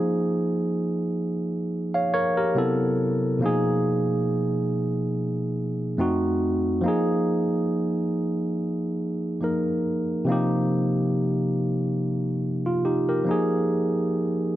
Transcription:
Already playing: F3 A#3 D#4 G#4
1.94 C#5 F5
2.14 A#4 C#5
2.37 G4 A#4
2.55 C3 F#3 B3 E4 A4
3.39 B2 F3 A#3
3.44 D#4 G#4
5.98 F2 A3 C4 D#4 F#4
6.81 F3 A#3
6.86 D#4 G#4
9.41 F3 A#3 D#4 A#4
10.25 C3 F3 A#3
10.30 D#4 G4
12.66 F4
12.85 D#4 G4
13.09 G4 A#4
13.24 F3 A#3
13.29 D#4 G#4

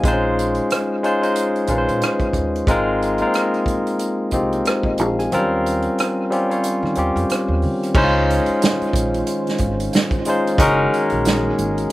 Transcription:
Already playing: G#5
0.04 A#1 G#3 C4 D#4 F4, kick, closed hi-hat
0.08 C5
0.13 C#4
0.39 closed hi-hat
0.55 closed hi-hat
0.70 cross-stick, closed hi-hat
1.03 G#3 C#4 D#4 F4 C5, closed hi-hat
1.21 G#3 C#4 D#4 F4 C5, closed hi-hat
1.36 closed hi-hat
1.56 closed hi-hat
1.67 A#1 G#3 C#4 D#4 F4, kick, closed hi-hat
1.72 B4
1.78 C5
1.88 A#2, closed hi-hat
2.02 cross-stick, closed hi-hat
2.20 kick, closed hi-hat
2.33 D#2, kick, closed hi-hat
2.56 closed hi-hat
2.67 G#1 G#3 C4 D#4 F4 A#4, kick, closed hi-hat
3.02 closed hi-hat
3.18 G#3 A#3 D#4, closed hi-hat
3.22 F4 A#4
3.27 C4
3.34 cross-stick, closed hi-hat
3.54 closed hi-hat
3.66 kick, closed hi-hat
3.87 closed hi-hat
3.99 closed hi-hat
4.31 C2 G#3 C4 D#4 F4, kick, closed hi-hat
4.35 G4
4.52 closed hi-hat
4.65 C5, cross-stick, closed hi-hat
4.83 G#1 D#5, kick
4.98 A#1 F5, closed hi-hat
5.19 G#5, cross-stick, closed hi-hat
5.32 D#2 F#3 C4 C#4 F4 A#4, closed hi-hat
5.38 G3
5.66 closed hi-hat
5.82 closed hi-hat
5.98 cross-stick, closed hi-hat
6.30 G3 C4 C#4 F4 G4, closed hi-hat
6.49 G3 C#4 F4 C5 C#5, closed hi-hat
6.64 closed hi-hat
6.83 D#3, cross-stick
6.95 D#2 G3 C4 C#4 F4 G4, closed hi-hat
7.16 F2, closed hi-hat
7.30 cross-stick, closed hi-hat
7.48 D#2
7.62 D#3, open hi-hat
7.83 cross-stick, closed hi-hat
7.94 C#2 D#3 G#3 C#4 D#4 E4 F4 C5, kick, crash
8.04 F4
8.30 closed hi-hat
8.46 muted upright bass stroke, closed hi-hat
8.62 snare, closed hi-hat
8.81 muted upright bass stroke, closed hi-hat
8.93 A#1, kick, closed hi-hat
9.14 closed hi-hat
9.27 closed hi-hat
9.47 snare, closed hi-hat
9.58 G#1, kick, closed hi-hat
9.80 closed hi-hat
9.93 snare, closed hi-hat
10.11 kick, closed hi-hat
10.25 G#3 C#4 D#4 F4, closed hi-hat
10.29 C5
10.47 closed hi-hat
10.58 F#1 G#3 A#3 C#4 D#4 F#4 G#4 A#4, kick, closed hi-hat
10.94 closed hi-hat
11.10 A#1, closed hi-hat
11.25 snare, closed hi-hat
11.58 G#1, closed hi-hat
11.78 closed hi-hat

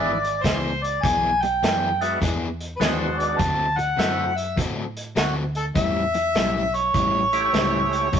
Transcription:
Already playing: G#1 E3 G#3 B3 D4 E4 G#4 D5 E5 G#5
0.24 closed hi-hat
0.43 C#2 E3 B3 D4 G#4 C5, kick, snare, closed hi-hat
0.83 D5, closed hi-hat
1.03 B1 E3 B3 D4 G#4 G#5, kick, closed hi-hat
1.42 G5, muted overdriven electric guitar stroke, closed hi-hat
1.62 F#2 E3 B3 D4 G#4, snare, closed hi-hat
2.01 G#3 B3 D4 F#4 E5, closed hi-hat
2.21 E2 E3 B3 D4 G#4, kick, snare, closed hi-hat
2.60 closed hi-hat
2.76 E3 G#3 B3 B4
2.81 D#2 B3 D4 F#4 G#4 C5, snare, closed hi-hat
3.18 D5, closed hi-hat
3.39 D2 D3 C4 F#4 A4 A5, kick, closed hi-hat
3.77 F#5, muted overdriven electric guitar stroke, closed hi-hat
3.97 F#2 D3 A3 C4 E4 F#4 A4, snare, closed hi-hat
4.37 E5, closed hi-hat
4.57 A2 D3 C4 F#4 A4, kick, closed hi-hat
4.96 closed hi-hat
5.16 D2 D3 C4 F#4 A4, snare, closed hi-hat
5.55 A4, closed hi-hat
5.75 E2 A2 G3 C#4 E4 E5, kick, closed hi-hat
6.14 muted overdriven electric guitar stroke, closed hi-hat
6.35 B1 A2 G3 C#4 E4, snare, closed hi-hat
6.74 C#5, closed hi-hat
6.94 A1 A2 G3 C#4 E4, kick, closed hi-hat
7.33 A3 C#4 E4 G4, closed hi-hat
7.53 C#2 A2 G3 C#4 E4 B4, snare, closed hi-hat
7.57 C5
7.93 closed hi-hat
8.12 A1 A2 G3 C#4 E4, kick, closed hi-hat

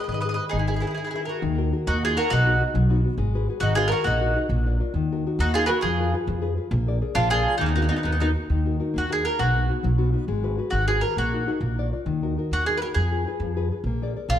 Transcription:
Already playing: G#4 A#4 B4
0.04 B4
0.08 G#2 D#3 D#5
0.12 B4 D#5
0.21 B4 D#5
0.25 G#4 A#4 B4 D#5
0.34 B4 D#5
0.39 G#4 A#4
0.49 G#1 D#3 D#4 G#4
0.58 E4 G#4
0.67 E4 G#4 A#4 B4
0.74 E4 G#4
0.80 E4 G#4 A#4 B4
0.87 E4 G#4
0.94 D#3 E4 G#4
1.04 E4 G#4
1.11 G#4 A#4 B4
1.16 E4
1.25 F#4 G#4 A#4 B4
1.42 D#2 D#3
1.58 D#4 F#4 A#4
1.72 D#4 F#4 A#4
1.87 D#2 A#3 D#4 F#4
2.03 D#4 F4 F#4 G#4 A#4
2.16 D#4 F#4 A#4
2.30 B1 B2 D#4 F#4
2.45 B3 D#4 F#4
2.60 B3 D#4 F#4
2.74 B1 F#3
2.90 B3 D#4 F#4
3.04 B3 D#4 F#4
3.17 G#1 G#3
3.34 F#4 G#4 B4
3.48 F#4 G#4 B4
3.60 G#1 D#3 D#4 F#4
3.75 F4 F#4 G#4 B4
3.88 F#4 A#4
4.04 A#1 A#3 D#4 F#4
4.21 D#4 F#4 A#4
4.35 D#4 F#4 A#4
4.49 A#1 A#3
4.66 F4 A#4 D5
4.80 F4 A#4 D5
4.94 D#2 D#3
5.12 D#4 F#4 A#4
5.27 D#4 F#4 A#4
5.39 D#2 A#3 D#4 F#4
5.54 D#4 F4 F#4 G#4 A#4
5.66 D#4 F#4 G#4 A#4 B4
5.70 F#4
5.81 F2 F3 F4 G#4
6.00 F4 G#4 B4
6.14 F4 G#4 B4
6.27 F2 F3
6.41 F4 G#4 B4
6.57 F4 G#4 B4
6.71 A#1 A#3
6.87 G#4 A#4 D5
7.02 G#4 A#4 D5
7.15 A#1 F3 D4 F4
7.30 F4 G#4 A#4 D5
7.46 G#4 D5
7.58 D#2 D#3 A#3 D#4
7.66 B3 D#4
7.76 B3 D#4 F#4 A#4
7.82 B3 D#4
7.89 B3 D#4 F#4 A#4
7.96 B3 D#4
8.03 D#2 A#3 B3 D#4
8.12 B3 D#4
8.20 B3 D#4 F#4 A#4
8.35 D#4 F#4 A#4
8.50 D#2 D#3
8.66 D#4 F#4 A#4
8.80 D#4 F#4 A#4
8.94 D#2 A#3
8.98 F#4
9.10 D#4 F#4 G#4 A#4
9.25 D#4 F#4 A#4
9.39 B1 B2 F#4
9.54 B3 D#4 F#4
9.69 B3 D#4 F#4
9.83 B1 F#3
9.98 B3 D#4 F#4
10.13 B3 D#4 F#4
10.28 G#1 G#3
10.43 F#4 G#4 B4
10.58 F#4 G#4 B4
10.70 G#1 D#3 F#4
10.88 F#4 G#4 B4
11.01 F#4 G#4 A#4 B4
11.17 A#1 A#3 F#4
11.33 D#4 F#4 A#4
11.47 D#4 F#4 A#4
11.61 A#1 A#3
11.78 F4 A#4 D5
11.92 F4 A#4 D5
12.06 D#2 D#3
12.22 D#4 F#4 A#4
12.38 D#4 F#4 A#4
12.51 D#2 A#3 F#4
12.66 D#4 F#4 G#4 A#4
12.77 B4
12.82 D#4 F#4 A#4
12.94 F2 F3 G#4
13.12 F4 G#4 B4
13.27 F4 G#4 B4
13.40 F2 F3
13.56 F4 G#4 B4
13.71 F4 G#4 B4
13.84 A#1 A#3
14.02 G#4 A#4 D5
14.16 G#4 A#4 D5
14.29 A#1 F3 F4

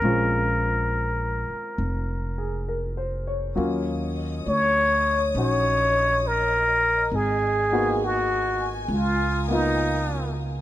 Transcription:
Already playing: A#4
0.02 A#1 G#3 C4 C#4 F4
1.50 muted upright bass stroke
1.78 F1
2.38 G#4
2.69 A#4
2.97 C5
3.27 C#5
3.56 D#2 F#3 A#3 C#4 F4 C#5 D#5 D#6
4.47 D2 C#5
5.35 A#1 C#4 D#4 F#4 C#5
6.27 A#4
7.12 G#1 G#4 G#5
7.72 A#3 B3 D#4 F#4
8.04 F#4
8.88 C#2 A#4 F5 D#6
8.95 F4
9.48 A#3 B3 D#4
9.52 D#4 F4

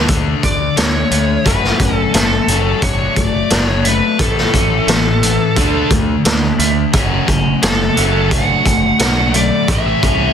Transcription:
0.08 D2 D3 A3 D4, kick, closed hi-hat
0.43 D2 D3 A3 D5, kick, closed hi-hat
0.76 D2 D3 A3 C#5, snare, closed hi-hat
1.11 D2 D3 A3, closed hi-hat
1.44 F#1 F#2 F#3 A3 C#4 B4, kick, closed hi-hat
1.64 snare
1.79 F#1 F#3 A3 C#4, kick, closed hi-hat
1.94 A4
2.14 F#1 F#3 A3 A4, snare, closed hi-hat
2.47 F#1 F#3 A3 C#4, closed hi-hat
2.82 F#1 F#3 A3 D4 C#5, kick, closed hi-hat
3.16 F#1 F#3 A3 D5, kick, closed hi-hat
3.50 F#1 F#3 A3 D4, snare, closed hi-hat
3.66 C#5
3.85 F#3 A3 B4, closed hi-hat
4.19 A1 A2 E3 A3 A4, kick, closed hi-hat
4.38 snare
4.53 A1 A2 E3 A3 C#4, kick, closed hi-hat
4.87 A1 A2 E3 A3, snare, closed hi-hat
5.22 A2 E3, closed hi-hat
5.56 D2 D3 A3 D4, kick, closed hi-hat
5.90 D2 D3 A3, kick, closed hi-hat
6.25 D2 D3 A3, snare, closed hi-hat
6.59 D2 D3 A3, closed hi-hat
6.93 F#1 F#2 C#3 F#3 A3 C#4, kick, closed hi-hat
7.28 F#1 F#2 C#3 F#3 A3 C#4, kick, closed hi-hat
7.62 F#1 F#2 C#3 F#3 A3 A4, snare, closed hi-hat
7.96 F#1 F#2 C#3 F#3 A3 C#4, closed hi-hat
8.31 F#1 D3 F#3 A3 D4 F#5, kick, closed hi-hat
8.65 F#1 D3 F#3 A3, kick, closed hi-hat
8.99 B1 D3 F#3 A3 D4, snare, closed hi-hat
9.34 D3 F#3 A3 D5, closed hi-hat
9.68 A1 A2 E3 A3 E5, kick, closed hi-hat
10.02 C2 A2 E3 A3 C#4, kick, closed hi-hat

